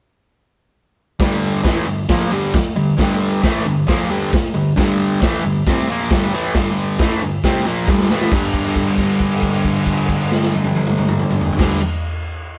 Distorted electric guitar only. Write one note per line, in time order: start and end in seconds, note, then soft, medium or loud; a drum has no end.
1.19 1.64 G2 loud
1.19 1.63 D3 loud
1.19 1.64 G3 loud
1.64 1.86 A2 medium
1.64 1.86 E3 loud
1.64 1.86 A3 loud
1.86 2.04 G2 medium
1.86 2.05 D3 medium
2.09 2.31 A#2 medium
2.09 2.31 F3 loud
2.09 2.31 A#3 loud
2.31 2.53 G2 medium
2.31 2.53 D3 loud
2.31 2.54 G3 loud
2.54 muted distorted electric guitar stroke medium
2.76 2.94 G2 medium
2.76 2.94 D3 medium
2.98 3.42 G2 loud
2.98 3.42 D3 loud
2.98 3.43 G3 loud
3.43 3.65 A2 loud
3.43 3.65 E3 medium
3.43 3.65 A3 loud
3.65 3.83 G2 medium
3.65 3.83 D3 medium
3.87 4.09 A#2 loud
3.87 4.09 F3 loud
3.87 4.10 A#3 loud
4.09 4.30 G2 loud
4.09 4.32 D3 loud
4.09 4.32 G3 loud
4.32 muted distorted electric guitar stroke medium
4.54 4.72 G2 medium
4.54 4.72 D3 medium
4.76 5.20 G2 loud
4.76 5.21 D3 loud
4.76 5.21 G3 loud
5.21 5.43 A2 medium
5.21 5.43 E3 loud
5.21 5.43 A3 loud
5.44 5.62 G2 medium
5.44 5.62 D3 medium
5.67 5.88 C3 medium
5.67 5.88 G3 medium
5.67 5.89 C4 medium
5.88 6.10 A#2 loud
5.88 6.10 F3 medium
5.88 6.11 A#3 loud
6.12 6.33 G2 loud
6.12 6.33 D3 loud
6.12 6.33 G3 loud
6.34 6.55 A2 loud
6.34 6.55 E3 loud
6.34 6.55 A3 loud
6.55 6.98 G2 loud
6.55 6.99 D3 loud
6.55 6.99 G3 loud
7.00 7.21 A2 loud
7.00 7.21 E3 loud
7.00 7.21 A3 loud
7.22 7.39 G2 medium
7.22 7.39 D3 medium
7.44 7.65 C3 loud
7.44 7.65 G3 medium
7.44 7.66 C4 loud
7.66 7.87 A#2 medium
7.66 7.87 F3 medium
7.66 7.88 A#3 loud
7.88 8.09 G2 medium
7.88 8.09 D3 medium
7.88 8.10 G3 medium
8.10 8.31 A2 loud
8.10 8.31 E3 loud
8.10 8.32 A3 loud
8.31 11.58 G2 medium
8.31 11.60 D3 medium
8.31 11.62 G3 loud
11.58 11.79 G2 medium
11.58 11.79 D3 loud
11.58 11.80 G3 loud